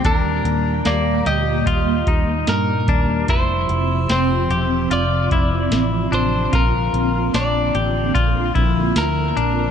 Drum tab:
HH |xxxxxxxx|xxxxxxxx|xxxxxxxx|
TB |--------|--------|--x---x-|
SD |--o---o-|--o---o-|--o---o-|
BD |o---oo-o|o----o--|o---oo--|